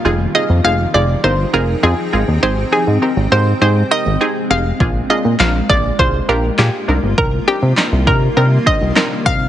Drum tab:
CP |--------|--------|--x---x-|--x---x-|
SD |--------|--------|--o---o-|--o---o-|
BD |--------|--------|o--oo---|o--o-o-o|